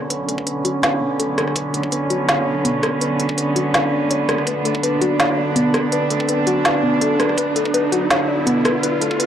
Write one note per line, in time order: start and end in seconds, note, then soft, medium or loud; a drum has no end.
0.00 9.26 D3 medium
0.00 9.26 B3 medium
0.00 4.43 C#4 medium
0.00 riser medium
0.10 0.64 B1 loud
0.10 0.28 B4 medium
0.10 closed hi-hat medium
0.28 0.45 A4 medium
0.28 closed hi-hat medium
0.38 kick loud
0.47 0.64 B4 medium
0.47 closed hi-hat medium
0.65 0.76 F#4 loud
0.65 closed hi-hat medium
0.83 1.00 B4 loud
0.83 snare loud
0.83 closed hi-hat medium
1.01 1.19 B3 medium
1.19 1.55 B1 medium
1.19 1.36 A4 loud
1.19 closed hi-hat medium
1.38 cross-stick medium
1.38 closed hi-hat soft
1.48 cross-stick soft
1.56 2.30 B1 loud
1.56 1.73 B4 medium
1.56 kick loud
1.56 closed hi-hat medium
1.74 1.85 A4 medium
1.74 closed hi-hat medium
1.84 kick loud
1.92 2.10 B4 loud
1.92 closed hi-hat medium
2.10 2.21 F#4 loud
2.10 closed hi-hat medium
2.28 2.46 F#1 medium
2.28 2.46 C#5 medium
2.28 snare loud
2.28 closed hi-hat medium
2.47 2.82 B1 medium
2.47 2.63 D5 medium
2.65 2.81 B3 loud
2.65 closed hi-hat medium
2.83 3.00 B4 medium
2.83 kick medium
2.83 cross-stick medium
2.83 closed hi-hat soft
3.01 3.55 B1 loud
3.01 3.19 B4 medium
3.01 closed hi-hat medium
3.19 3.36 A4 medium
3.19 closed hi-hat medium
3.29 kick loud
3.38 3.55 B4 medium
3.38 closed hi-hat medium
3.56 3.67 F#4 loud
3.56 closed hi-hat medium
3.74 3.91 B4 loud
3.74 snare loud
3.74 closed hi-hat medium
3.92 4.09 D5 medium
4.02 4.46 F#1 medium
4.10 4.27 C#5 medium
4.10 closed hi-hat medium
4.29 4.45 B4 medium
4.29 cross-stick medium
4.29 closed hi-hat soft
4.38 cross-stick soft
4.47 5.21 B1 loud
4.47 9.26 D4 medium
4.47 4.64 B4 medium
4.47 kick loud
4.47 closed hi-hat medium
4.65 4.76 A4 medium
4.65 closed hi-hat medium
4.75 kick loud
4.83 5.01 B4 loud
4.83 closed hi-hat medium
5.01 5.12 F#4 loud
5.01 closed hi-hat medium
5.19 5.37 F#1 medium
5.19 5.37 C#5 medium
5.19 snare loud
5.19 closed hi-hat medium
5.38 5.73 B1 loud
5.38 5.54 D5 medium
5.56 5.72 B3 loud
5.56 closed hi-hat medium
5.74 5.91 B4 medium
5.74 kick medium
5.74 cross-stick medium
5.74 closed hi-hat soft
5.92 6.46 B1 loud
5.92 6.10 B4 medium
5.92 closed hi-hat medium
6.10 6.27 A4 medium
6.10 closed hi-hat medium
6.20 kick loud
6.29 6.46 B4 medium
6.29 closed hi-hat medium
6.47 6.58 F#4 loud
6.47 closed hi-hat medium
6.65 6.82 B4 loud
6.65 snare loud
6.65 closed hi-hat medium
6.83 7.01 B3 medium
7.01 7.37 B1 medium
7.01 7.18 A4 loud
7.01 closed hi-hat medium
7.20 7.36 B4 medium
7.20 cross-stick medium
7.20 closed hi-hat soft
7.29 cross-stick soft
7.38 8.12 B1 loud
7.38 7.55 B4 medium
7.38 kick loud
7.38 closed hi-hat medium
7.56 7.67 A4 medium
7.56 closed hi-hat medium
7.65 kick loud
7.74 7.91 B4 loud
7.74 closed hi-hat medium
7.92 8.03 F#4 loud
7.92 closed hi-hat medium
8.10 8.27 F#1 medium
8.10 8.28 C#5 medium
8.10 snare loud
8.10 closed hi-hat medium
8.28 8.64 B1 medium
8.28 8.45 D5 medium
8.47 8.63 B3 loud
8.47 closed hi-hat medium
8.65 8.81 B4 medium
8.65 kick medium
8.65 cross-stick medium
8.65 closed hi-hat soft
8.83 9.26 B1 loud
8.83 9.00 B4 medium
8.83 closed hi-hat medium
9.01 9.18 A4 medium
9.01 closed hi-hat medium
9.11 kick loud
9.19 9.26 B4 medium
9.19 closed hi-hat medium